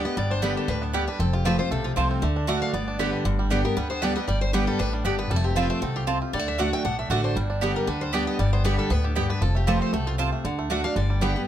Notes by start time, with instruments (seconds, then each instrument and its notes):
Already playing: five-string banjo D3 D4
0.05 five-string banjo B3, steel-string acoustic guitar B3 G4 D#5
0.17 upright bass G1, steel-string acoustic guitar G2 D5, five-string banjo G3
0.31 five-string banjo D4, steel-string acoustic guitar C5
0.42 steel-string acoustic guitar D3 G3 B3 G4 B4, five-string banjo G3, mandolin B3 G4 D5 G5
0.57 five-string banjo G4, steel-string acoustic guitar A4
0.68 upright bass D2, steel-string acoustic guitar A2 B4, five-string banjo D4
0.82 five-string banjo B3, steel-string acoustic guitar D4
0.93 steel-string acoustic guitar G2 G4, five-string banjo G3, mandolin B3 G4 D5 G5
1.08 five-string banjo D4, steel-string acoustic guitar B4
1.19 upright bass F1, steel-string acoustic guitar F2 A4, five-string banjo C4
1.33 five-string banjo F4, steel-string acoustic guitar G4
1.45 steel-string acoustic guitar F3 A3 C4 F4 B4, mandolin C4 F4 C5 A5, five-string banjo G4
1.59 steel-string acoustic guitar C4 F4 C5, five-string banjo F4
1.71 upright bass B1, steel-string acoustic guitar C3 A4, five-string banjo A3
1.84 five-string banjo F3, steel-string acoustic guitar F4
1.96 upright bass C2, steel-string acoustic guitar F3 A3 C4 F4, mandolin C4 F4 C5 A5, five-string banjo F4
2.11 five-string banjo C4
2.22 upright bass D2, steel-string acoustic guitar D3, five-string banjo A3
2.36 five-string banjo D4
2.47 steel-string acoustic guitar D3 A3 D4 F#4, mandolin A3 F#4 D5 F#5, five-string banjo A3
2.62 five-string banjo D4, steel-string acoustic guitar F5
2.73 upright bass G1, steel-string acoustic guitar G2 D5, five-string banjo B3
2.88 five-string banjo D4
2.99 steel-string acoustic guitar D3 G3 B3 G4 B4, mandolin B3 G4 D5 G5, five-string banjo G4
3.13 five-string banjo D4
3.25 upright bass G1, steel-string acoustic guitar G2, five-string banjo D3
3.39 five-string banjo G3
3.50 steel-string acoustic guitar D3 G3 B3 G4, mandolin B3 G4 D5 G5, five-string banjo G4
3.65 five-string banjo B3, steel-string acoustic guitar B3 G4 A#4
3.76 upright bass D2, steel-string acoustic guitar D3 B4, five-string banjo G3
3.90 five-string banjo B3, steel-string acoustic guitar C5
4.02 steel-string acoustic guitar D3 G3 B3 G4 D5, mandolin B3 G4 D5 G5, five-string banjo D4
4.16 five-string banjo G3, steel-string acoustic guitar B3 G4 D#5
4.28 upright bass G1, steel-string acoustic guitar G2 D5, five-string banjo G3
4.41 steel-string acoustic guitar C5
4.53 steel-string acoustic guitar D3 G3 B3 G4 B4, mandolin B3 G4 D5 G5, five-string banjo G4
4.67 five-string banjo G3, steel-string acoustic guitar A4
4.79 upright bass A1, steel-string acoustic guitar A2 B4, five-string banjo D4
4.93 five-string banjo G3, steel-string acoustic guitar D4
5.05 upright bass G1, steel-string acoustic guitar G2 G4, mandolin B3 G4 D5 G5, five-string banjo D4
5.19 five-string banjo B3, steel-string acoustic guitar B4
5.30 upright bass F1, steel-string acoustic guitar F2 A4, five-string banjo G3
5.36 five-string banjo A3
5.44 five-string banjo C4, steel-string acoustic guitar G4
5.56 steel-string acoustic guitar F3 A3 C4 F4 B4, mandolin C4 F4 C5 A5, five-string banjo F4
5.70 five-string banjo A3, steel-string acoustic guitar C5
5.82 upright bass C2, steel-string acoustic guitar B2 A4, five-string banjo C4
5.96 steel-string acoustic guitar F4, five-string banjo G4
6.07 steel-string acoustic guitar C3, mandolin C4 F4 C5 A5, five-string banjo C4
6.22 five-string banjo F4
6.33 upright bass D2, steel-string acoustic guitar D3 D5, five-string banjo G3
6.39 five-string banjo A3
6.48 five-string banjo D4, steel-string acoustic guitar E5
6.58 steel-string acoustic guitar D3 A3 D4 F#4 F#5, mandolin A3 F#4 D5 F#5, five-string banjo D4
6.73 five-string banjo A3, steel-string acoustic guitar G5
6.85 upright bass B1, steel-string acoustic guitar A2 F#5, five-string banjo D4
6.99 five-string banjo A3, steel-string acoustic guitar E5
7.10 upright bass A1, steel-string acoustic guitar D3 A3 D4 F#4 D5, mandolin A3 F#4 D5 F#5, five-string banjo D4
7.24 five-string banjo D4, steel-string acoustic guitar C5
7.36 upright bass G1, steel-string acoustic guitar G2, five-string banjo G3
7.50 five-string banjo D4
7.61 steel-string acoustic guitar D3 G3 B3 G4, mandolin B3 G4 D5 G5, five-string banjo G4
7.76 five-string banjo G3, steel-string acoustic guitar A#4
7.87 upright bass D2, steel-string acoustic guitar D3 B4, five-string banjo D4
8.01 five-string banjo G3, steel-string acoustic guitar C5
8.13 steel-string acoustic guitar D3 G3 B3 G4 D5, mandolin B3 G4 D5 G5, five-string banjo D4
8.27 five-string banjo B3, steel-string acoustic guitar D#5
8.39 upright bass G1, steel-string acoustic guitar G2 D5, five-string banjo G3
8.53 five-string banjo B3, steel-string acoustic guitar C5
8.64 steel-string acoustic guitar D3 G3 B3 G4 B4, mandolin B3 G4 D5 G5, five-string banjo D4
8.79 five-string banjo G3, steel-string acoustic guitar A4
8.90 upright bass D2, steel-string acoustic guitar A2 B4, five-string banjo B3
9.04 steel-string acoustic guitar D4, five-string banjo G4
9.15 steel-string acoustic guitar G2 G4, mandolin B3 G4 D5 G5, five-string banjo B3
9.30 five-string banjo D4, steel-string acoustic guitar B4
9.41 upright bass F1, steel-string acoustic guitar F2 A4, five-string banjo F3
9.55 five-string banjo A3, steel-string acoustic guitar G4
9.67 steel-string acoustic guitar F3 A3 C4 F4 B4, mandolin C4 F4 C5 A5, five-string banjo G4
9.81 five-string banjo C4, steel-string acoustic guitar C5
9.93 upright bass C2, steel-string acoustic guitar B2 A4, five-string banjo A3
10.07 five-string banjo C4, steel-string acoustic guitar F4
10.18 steel-string acoustic guitar C3, mandolin C4 F4 C5 A5, five-string banjo F4
10.32 five-string banjo A3
10.45 upright bass D2, five-string banjo D3, steel-string acoustic guitar D3
10.59 five-string banjo A3
10.70 steel-string acoustic guitar D3 A3 D4 F#4, mandolin A3 F#4 D5 F#5, five-string banjo D4
10.84 five-string banjo D4, steel-string acoustic guitar D4 F#4 F5
10.96 upright bass G1, steel-string acoustic guitar G2 D5, five-string banjo D3
11.10 five-string banjo G3
11.21 steel-string acoustic guitar D3 G3 B3 G4 B4, mandolin B3 G4 D5 G5, five-string banjo G4
11.36 five-string banjo B3, steel-string acoustic guitar B3 G4